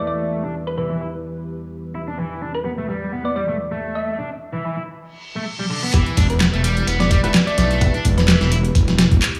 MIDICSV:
0, 0, Header, 1, 8, 480
1, 0, Start_track
1, 0, Key_signature, 1, "minor"
1, 0, Tempo, 468750
1, 317, Time_signature, 4, 2, 24, 8
1, 9623, End_track
2, 0, Start_track
2, 0, Title_t, "Synth pluck"
2, 0, Program_c, 0, 84
2, 74, Note_on_c, 0, 74, 71
2, 159, Note_off_c, 0, 74, 0
2, 687, Note_on_c, 0, 71, 85
2, 758, Note_off_c, 0, 71, 0
2, 796, Note_on_c, 0, 71, 72
2, 880, Note_off_c, 0, 71, 0
2, 2606, Note_on_c, 0, 71, 87
2, 2717, Note_off_c, 0, 71, 0
2, 3327, Note_on_c, 0, 74, 84
2, 3397, Note_off_c, 0, 74, 0
2, 3440, Note_on_c, 0, 74, 73
2, 3523, Note_off_c, 0, 74, 0
2, 4048, Note_on_c, 0, 76, 88
2, 4158, Note_off_c, 0, 76, 0
2, 6449, Note_on_c, 0, 71, 90
2, 6559, Note_off_c, 0, 71, 0
2, 7168, Note_on_c, 0, 74, 93
2, 7238, Note_off_c, 0, 74, 0
2, 7276, Note_on_c, 0, 74, 78
2, 7361, Note_off_c, 0, 74, 0
2, 7647, Note_on_c, 0, 74, 89
2, 7718, Note_off_c, 0, 74, 0
2, 7761, Note_on_c, 0, 74, 78
2, 7843, Note_off_c, 0, 74, 0
2, 8374, Note_on_c, 0, 71, 90
2, 8441, Note_off_c, 0, 71, 0
2, 8481, Note_on_c, 0, 71, 78
2, 8563, Note_off_c, 0, 71, 0
2, 9623, End_track
3, 0, Start_track
3, 0, Title_t, "Analog synth pad"
3, 0, Program_c, 1, 89
3, 0, Note_on_c, 1, 52, 73
3, 0, Note_on_c, 1, 64, 66
3, 0, Note_on_c, 1, 67, 66
3, 0, Note_on_c, 1, 71, 81
3, 4116, Note_off_c, 1, 52, 0
3, 4116, Note_off_c, 1, 71, 0
3, 4117, Note_off_c, 1, 67, 0
3, 4118, Note_off_c, 1, 64, 0
3, 6076, Note_on_c, 1, 64, 78
3, 6076, Note_on_c, 1, 71, 86
3, 6078, Note_on_c, 1, 67, 73
3, 9623, Note_off_c, 1, 64, 0
3, 9623, Note_off_c, 1, 67, 0
3, 9623, Note_off_c, 1, 71, 0
3, 9623, End_track
4, 0, Start_track
4, 0, Title_t, "Synth stab"
4, 0, Program_c, 2, 62
4, 6078, Note_on_c, 2, 59, 77
4, 6078, Note_on_c, 2, 64, 69
4, 6078, Note_on_c, 2, 67, 70
4, 6078, Note_on_c, 2, 71, 83
4, 6216, Note_off_c, 2, 64, 0
4, 6217, Note_off_c, 2, 59, 0
4, 6217, Note_off_c, 2, 67, 0
4, 6217, Note_off_c, 2, 71, 0
4, 7409, Note_on_c, 2, 64, 88
4, 7410, Note_on_c, 2, 59, 94
4, 7410, Note_on_c, 2, 67, 86
4, 7410, Note_on_c, 2, 71, 107
4, 7612, Note_off_c, 2, 64, 0
4, 7613, Note_off_c, 2, 59, 0
4, 7613, Note_off_c, 2, 67, 0
4, 7613, Note_off_c, 2, 71, 0
4, 7999, Note_on_c, 2, 59, 76
4, 7999, Note_on_c, 2, 64, 69
4, 7999, Note_on_c, 2, 67, 74
4, 7999, Note_on_c, 2, 71, 89
4, 9623, Note_off_c, 2, 59, 0
4, 9623, Note_off_c, 2, 64, 0
4, 9623, Note_off_c, 2, 67, 0
4, 9623, Note_off_c, 2, 71, 0
4, 9623, End_track
5, 0, Start_track
5, 0, Title_t, "Overdriven electric guitar"
5, 0, Program_c, 3, 29
5, 0, Note_on_c, 3, 57, 69
5, 434, Note_off_c, 3, 57, 0
5, 445, Note_on_c, 3, 62, 69
5, 551, Note_off_c, 3, 62, 0
5, 795, Note_on_c, 3, 52, 75
5, 914, Note_off_c, 3, 52, 0
5, 926, Note_on_c, 3, 52, 67
5, 1026, Note_off_c, 3, 52, 0
5, 1035, Note_on_c, 3, 64, 68
5, 1092, Note_off_c, 3, 64, 0
5, 1996, Note_on_c, 3, 64, 67
5, 2053, Note_off_c, 3, 64, 0
5, 2127, Note_on_c, 3, 62, 68
5, 2226, Note_off_c, 3, 62, 0
5, 2232, Note_on_c, 3, 52, 93
5, 2464, Note_off_c, 3, 52, 0
5, 2475, Note_on_c, 3, 62, 72
5, 2570, Note_off_c, 3, 62, 0
5, 2713, Note_on_c, 3, 59, 72
5, 2772, Note_off_c, 3, 59, 0
5, 2846, Note_on_c, 3, 57, 91
5, 2926, Note_off_c, 3, 57, 0
5, 2958, Note_on_c, 3, 55, 69
5, 3187, Note_off_c, 3, 55, 0
5, 3196, Note_on_c, 3, 59, 91
5, 3314, Note_off_c, 3, 59, 0
5, 3326, Note_on_c, 3, 59, 72
5, 3431, Note_off_c, 3, 59, 0
5, 3437, Note_on_c, 3, 55, 69
5, 3531, Note_off_c, 3, 55, 0
5, 3565, Note_on_c, 3, 57, 73
5, 3645, Note_off_c, 3, 57, 0
5, 3805, Note_on_c, 3, 57, 70
5, 4274, Note_off_c, 3, 57, 0
5, 4286, Note_on_c, 3, 62, 69
5, 4391, Note_off_c, 3, 62, 0
5, 4637, Note_on_c, 3, 52, 73
5, 4755, Note_off_c, 3, 52, 0
5, 4767, Note_on_c, 3, 52, 72
5, 4866, Note_off_c, 3, 52, 0
5, 4877, Note_on_c, 3, 64, 67
5, 4934, Note_off_c, 3, 64, 0
5, 5486, Note_on_c, 3, 57, 73
5, 5566, Note_off_c, 3, 57, 0
5, 5727, Note_on_c, 3, 55, 72
5, 5775, Note_off_c, 3, 55, 0
5, 5839, Note_on_c, 3, 50, 72
5, 5956, Note_off_c, 3, 50, 0
5, 5967, Note_on_c, 3, 59, 70
5, 6046, Note_off_c, 3, 59, 0
5, 6076, Note_on_c, 3, 52, 99
5, 6306, Note_off_c, 3, 52, 0
5, 6315, Note_on_c, 3, 62, 76
5, 6410, Note_off_c, 3, 62, 0
5, 6556, Note_on_c, 3, 59, 80
5, 6613, Note_off_c, 3, 59, 0
5, 6687, Note_on_c, 3, 57, 100
5, 6766, Note_off_c, 3, 57, 0
5, 6795, Note_on_c, 3, 55, 73
5, 7026, Note_off_c, 3, 55, 0
5, 7036, Note_on_c, 3, 59, 99
5, 7154, Note_off_c, 3, 59, 0
5, 7166, Note_on_c, 3, 59, 79
5, 7271, Note_off_c, 3, 59, 0
5, 7277, Note_on_c, 3, 55, 74
5, 7371, Note_off_c, 3, 55, 0
5, 7408, Note_on_c, 3, 57, 77
5, 7487, Note_off_c, 3, 57, 0
5, 7651, Note_on_c, 3, 57, 76
5, 8116, Note_off_c, 3, 57, 0
5, 8133, Note_on_c, 3, 62, 78
5, 8234, Note_off_c, 3, 62, 0
5, 8480, Note_on_c, 3, 52, 81
5, 8596, Note_off_c, 3, 52, 0
5, 8610, Note_on_c, 3, 52, 74
5, 8707, Note_off_c, 3, 52, 0
5, 8717, Note_on_c, 3, 64, 75
5, 8773, Note_off_c, 3, 64, 0
5, 9623, End_track
6, 0, Start_track
6, 0, Title_t, "Detuned saw bass"
6, 0, Program_c, 4, 39
6, 6319, Note_on_c, 4, 28, 100
6, 6630, Note_off_c, 4, 28, 0
6, 6689, Note_on_c, 4, 28, 97
6, 6988, Note_off_c, 4, 28, 0
6, 7038, Note_on_c, 4, 28, 89
6, 7350, Note_off_c, 4, 28, 0
6, 7409, Note_on_c, 4, 28, 102
6, 7487, Note_off_c, 4, 28, 0
6, 7757, Note_on_c, 4, 35, 89
6, 8069, Note_off_c, 4, 35, 0
6, 8241, Note_on_c, 4, 28, 98
6, 8551, Note_off_c, 4, 28, 0
6, 8612, Note_on_c, 4, 28, 95
6, 8910, Note_off_c, 4, 28, 0
6, 8960, Note_on_c, 4, 28, 90
6, 9271, Note_off_c, 4, 28, 0
6, 9332, Note_on_c, 4, 28, 100
6, 9409, Note_off_c, 4, 28, 0
6, 9623, End_track
7, 0, Start_track
7, 0, Title_t, "Reverse cymbal"
7, 0, Program_c, 5, 119
7, 5117, Note_on_c, 5, 60, 72
7, 6078, Note_off_c, 5, 60, 0
7, 9623, End_track
8, 0, Start_track
8, 0, Title_t, "Drums"
8, 6079, Note_on_c, 9, 36, 110
8, 6079, Note_on_c, 9, 42, 90
8, 6080, Note_off_c, 9, 42, 0
8, 6080, Note_on_c, 9, 42, 45
8, 6181, Note_off_c, 9, 36, 0
8, 6182, Note_off_c, 9, 42, 0
8, 6210, Note_on_c, 9, 42, 22
8, 6312, Note_off_c, 9, 42, 0
8, 6319, Note_on_c, 9, 36, 96
8, 6320, Note_on_c, 9, 42, 76
8, 6320, Note_on_c, 9, 46, 81
8, 6422, Note_off_c, 9, 36, 0
8, 6422, Note_off_c, 9, 42, 0
8, 6423, Note_off_c, 9, 46, 0
8, 6449, Note_on_c, 9, 42, 33
8, 6552, Note_off_c, 9, 42, 0
8, 6558, Note_on_c, 9, 38, 115
8, 6558, Note_on_c, 9, 42, 91
8, 6560, Note_off_c, 9, 42, 0
8, 6560, Note_on_c, 9, 39, 105
8, 6560, Note_on_c, 9, 42, 46
8, 6660, Note_off_c, 9, 38, 0
8, 6663, Note_off_c, 9, 39, 0
8, 6663, Note_off_c, 9, 42, 0
8, 6693, Note_on_c, 9, 42, 22
8, 6795, Note_off_c, 9, 42, 0
8, 6799, Note_on_c, 9, 42, 71
8, 6801, Note_off_c, 9, 42, 0
8, 6801, Note_on_c, 9, 42, 78
8, 6903, Note_off_c, 9, 42, 0
8, 6930, Note_on_c, 9, 42, 33
8, 7033, Note_off_c, 9, 42, 0
8, 7039, Note_on_c, 9, 42, 90
8, 7040, Note_off_c, 9, 42, 0
8, 7040, Note_on_c, 9, 42, 45
8, 7143, Note_off_c, 9, 42, 0
8, 7169, Note_on_c, 9, 38, 50
8, 7172, Note_on_c, 9, 42, 22
8, 7271, Note_off_c, 9, 38, 0
8, 7274, Note_off_c, 9, 42, 0
8, 7278, Note_on_c, 9, 42, 69
8, 7279, Note_on_c, 9, 36, 97
8, 7280, Note_off_c, 9, 42, 0
8, 7280, Note_on_c, 9, 42, 81
8, 7382, Note_off_c, 9, 36, 0
8, 7382, Note_off_c, 9, 42, 0
8, 7412, Note_on_c, 9, 42, 34
8, 7514, Note_off_c, 9, 42, 0
8, 7517, Note_on_c, 9, 38, 118
8, 7517, Note_on_c, 9, 42, 89
8, 7521, Note_off_c, 9, 42, 0
8, 7521, Note_on_c, 9, 39, 109
8, 7521, Note_on_c, 9, 42, 45
8, 7620, Note_off_c, 9, 38, 0
8, 7623, Note_off_c, 9, 39, 0
8, 7623, Note_off_c, 9, 42, 0
8, 7652, Note_on_c, 9, 42, 22
8, 7755, Note_off_c, 9, 42, 0
8, 7760, Note_on_c, 9, 38, 43
8, 7760, Note_on_c, 9, 42, 64
8, 7862, Note_off_c, 9, 38, 0
8, 7862, Note_off_c, 9, 42, 0
8, 7892, Note_on_c, 9, 42, 34
8, 7994, Note_off_c, 9, 42, 0
8, 7999, Note_on_c, 9, 42, 88
8, 8001, Note_on_c, 9, 36, 116
8, 8002, Note_off_c, 9, 42, 0
8, 8002, Note_on_c, 9, 42, 45
8, 8103, Note_off_c, 9, 36, 0
8, 8104, Note_off_c, 9, 42, 0
8, 8132, Note_on_c, 9, 42, 22
8, 8234, Note_off_c, 9, 42, 0
8, 8240, Note_on_c, 9, 42, 70
8, 8241, Note_on_c, 9, 36, 97
8, 8243, Note_off_c, 9, 42, 0
8, 8243, Note_on_c, 9, 42, 76
8, 8343, Note_off_c, 9, 36, 0
8, 8345, Note_off_c, 9, 42, 0
8, 8372, Note_on_c, 9, 38, 40
8, 8374, Note_on_c, 9, 42, 35
8, 8475, Note_off_c, 9, 38, 0
8, 8477, Note_off_c, 9, 42, 0
8, 8480, Note_on_c, 9, 38, 115
8, 8480, Note_on_c, 9, 42, 89
8, 8482, Note_off_c, 9, 42, 0
8, 8482, Note_on_c, 9, 39, 110
8, 8482, Note_on_c, 9, 42, 44
8, 8583, Note_off_c, 9, 38, 0
8, 8584, Note_off_c, 9, 39, 0
8, 8584, Note_off_c, 9, 42, 0
8, 8611, Note_on_c, 9, 38, 41
8, 8612, Note_on_c, 9, 42, 22
8, 8714, Note_off_c, 9, 38, 0
8, 8715, Note_off_c, 9, 42, 0
8, 8721, Note_on_c, 9, 42, 71
8, 8824, Note_off_c, 9, 42, 0
8, 8853, Note_on_c, 9, 42, 34
8, 8955, Note_off_c, 9, 42, 0
8, 8961, Note_on_c, 9, 36, 110
8, 8961, Note_on_c, 9, 42, 88
8, 8962, Note_off_c, 9, 42, 0
8, 8962, Note_on_c, 9, 42, 45
8, 9064, Note_off_c, 9, 36, 0
8, 9065, Note_off_c, 9, 42, 0
8, 9092, Note_on_c, 9, 38, 45
8, 9092, Note_on_c, 9, 42, 22
8, 9194, Note_off_c, 9, 42, 0
8, 9195, Note_off_c, 9, 38, 0
8, 9200, Note_on_c, 9, 38, 121
8, 9200, Note_on_c, 9, 42, 69
8, 9201, Note_off_c, 9, 42, 0
8, 9201, Note_on_c, 9, 42, 82
8, 9303, Note_off_c, 9, 38, 0
8, 9303, Note_off_c, 9, 42, 0
8, 9332, Note_on_c, 9, 36, 97
8, 9334, Note_on_c, 9, 42, 34
8, 9434, Note_off_c, 9, 36, 0
8, 9437, Note_off_c, 9, 42, 0
8, 9441, Note_on_c, 9, 42, 88
8, 9444, Note_off_c, 9, 42, 0
8, 9444, Note_on_c, 9, 39, 110
8, 9444, Note_on_c, 9, 42, 46
8, 9546, Note_off_c, 9, 39, 0
8, 9546, Note_off_c, 9, 42, 0
8, 9573, Note_on_c, 9, 42, 23
8, 9623, Note_off_c, 9, 42, 0
8, 9623, End_track
0, 0, End_of_file